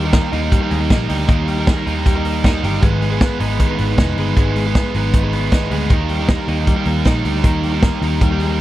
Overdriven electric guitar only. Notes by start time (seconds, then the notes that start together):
0.05 D#4 G4 A#4
0.33 A#3 D#4 G4 A#4
0.61 D#4 G4 A#4
0.90 A#3 D#4 G4 A#4
1.09 A#3 D#4 G4 A#4
1.28 D#3 A#3 D#4 G4 A#4
1.58 D#4 G4 A#4
1.86 A#3 D#4 G4 A#4
2.15 D#4 G4 A#4
2.44 A#3 D#4 G4 A#4
2.63 A#3 D#4 G4 A#4
2.82 G#2 D#3 G#3 B3 G#4 B4
3.10 G#3 B3 G#4 B4
3.39 G#3 B3 G#4 B4
3.68 G#3 B3 G#4 B4
3.98 G#3 B3 G#4 B4
4.18 G#3 B3 G#4 B4
4.37 G#2 D#3 G#3 B3 G#4 B4
4.66 G#3 B3 G#4 B4
4.95 G#3 B3 G#4 B4
5.24 G#3 B3 G#4 B4
5.52 G#3 B3 G#4 B4
5.71 G#3 B3 G#4 B4
5.90 D#3 A#3 D#4 G4 A#4
6.19 D#4 G4 A#4
6.48 A#3 D#4 G4 A#4
6.76 D#4 G4 A#4
7.05 A#3 D#4 G4 A#4
7.24 A#3 D#4 G4 A#4
7.43 D#3 A#3 D#4 G4 A#4
7.73 D#4 G4 A#4
8.03 A#3 D#4 G4 A#4
8.31 D#4 G4 A#4